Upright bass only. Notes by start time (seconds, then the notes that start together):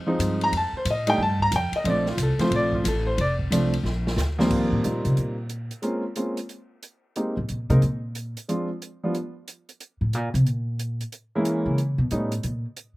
Already playing: F2
0.19 G2
0.52 F2
0.73 muted upright bass stroke
0.85 A2
1.18 G2
1.51 F2
1.72 muted upright bass stroke
1.84 A#1
2.17 C2
2.38 muted upright bass stroke
2.51 A#1
2.84 A1
3.18 F1
3.51 C2
3.83 A#1
4.17 D2
4.72 A2
4.85 A#2
5.05 C3
5.18 A#2
7.37 A2
7.50 A#2
7.70 C3
7.83 A#2
10.01 A2
10.14 A#2
10.34 C3
10.47 A#2
11.66 C#3
11.98 B2
12.12 A2
12.44 A#2